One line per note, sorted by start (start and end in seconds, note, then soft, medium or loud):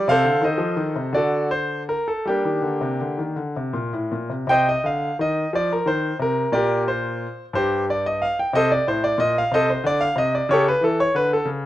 0.08 0.25 C3 medium
0.08 0.42 A4 medium
0.08 0.42 C5 medium
0.08 0.43 F5 loud
0.24 0.42 D3 medium
0.41 0.59 D#3 medium
0.41 1.10 A4 medium
0.41 1.10 C5 medium
0.41 1.03 D#5 medium
0.58 0.76 F3 medium
0.76 0.94 D#3 medium
0.96 1.12 C3 medium
1.13 1.93 D3 medium
1.13 1.48 F#4 medium
1.13 1.48 A4 medium
1.13 1.50 D5 medium
1.51 1.82 C5 medium
1.89 2.06 A#4 medium
2.08 2.25 A4 medium
2.25 2.43 G3 medium
2.25 3.35 A#3 medium
2.25 3.35 D4 medium
2.25 3.22 G4 medium
2.44 2.62 D#3 soft
2.62 2.80 D3 medium
2.81 2.99 C3 medium
3.01 3.18 D3 soft
3.18 3.36 D#3 soft
3.36 3.54 D3 soft
3.56 3.74 C3 soft
3.73 3.92 A#2 medium
3.93 4.12 A2 soft
4.12 4.30 A#2 soft
4.30 4.46 C3 soft
4.47 4.73 C3 medium
4.47 4.66 C5 medium
4.47 4.67 D#5 medium
4.47 4.67 G5 loud
4.69 4.86 D#5 medium
4.84 5.09 D3 medium
4.84 5.15 F5 medium
5.19 5.43 D#3 medium
5.19 5.49 D#5 medium
5.53 5.77 F3 medium
5.53 5.71 D5 medium
5.72 5.88 A#4 medium
5.86 6.10 D#3 medium
5.86 6.16 C5 medium
6.19 6.44 C3 medium
6.19 6.50 A#4 medium
6.52 7.25 A#2 medium
6.52 6.85 G4 medium
6.52 6.85 A#4 medium
6.52 6.82 D5 medium
6.88 7.45 C5 medium
7.53 8.24 G2 medium
7.53 7.86 G4 medium
7.53 7.83 C5 medium
7.90 8.05 D5 medium
8.06 8.21 D#5 medium
8.22 8.37 F5 medium
8.39 8.54 G5 medium
8.53 8.76 C3 medium
8.53 8.70 A4 medium
8.53 8.70 C5 medium
8.53 8.70 D#5 loud
8.72 8.86 D5 medium
8.87 9.10 A2 medium
8.87 9.03 C5 medium
9.04 9.19 D5 medium
9.18 9.41 A#2 medium
9.18 9.35 D#5 medium
9.38 9.52 F5 medium
9.51 9.74 C3 medium
9.51 9.68 A4 medium
9.51 9.67 C5 medium
9.51 9.68 D#5 loud
9.70 9.84 C5 medium
9.84 10.06 D3 medium
9.84 10.01 D5 loud
10.01 10.16 F5 medium
10.15 10.39 C3 medium
10.15 10.32 D#5 medium
10.35 10.49 D5 medium
10.49 10.72 C#3 medium
10.49 10.65 G4 medium
10.49 10.65 A4 medium
10.49 10.65 C#5 loud
10.68 10.82 B4 medium
10.81 11.04 E3 medium
10.81 10.98 A4 medium
11.00 11.14 C#5 loud
11.15 11.37 D3 medium
11.15 11.30 B4 medium
11.33 11.47 A4 medium
11.45 11.66 C#3 medium